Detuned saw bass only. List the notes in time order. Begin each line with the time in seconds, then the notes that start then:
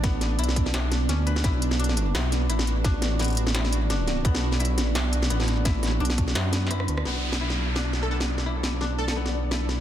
Already playing: A1
0.39 B1
0.74 B1
1.09 D2
1.44 B1
2.15 B1
2.50 A1
3.20 A1
4.25 B1
4.74 A#1
4.95 B1
5.31 A1
6.01 B1
6.36 F#2
6.89 D2
7.06 B1